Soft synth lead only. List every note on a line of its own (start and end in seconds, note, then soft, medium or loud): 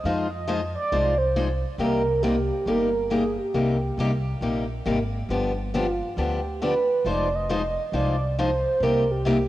0.05 0.30 F5 loud
0.31 0.72 D#5 loud
0.75 1.20 D5 loud
1.18 1.62 C5 medium
1.80 2.24 A#4 loud
2.22 2.69 G4 medium
2.67 3.11 A#4 loud
3.12 3.37 G#4 medium
3.38 4.66 G4 medium
5.77 6.22 F4 medium
6.20 6.63 G4 medium
6.63 7.03 B4 medium
7.08 7.37 D5 loud
7.35 7.94 D#5 loud
7.96 8.35 D5 loud
8.40 8.84 C5 medium
8.83 9.13 A#4 loud
9.11 9.48 G4 medium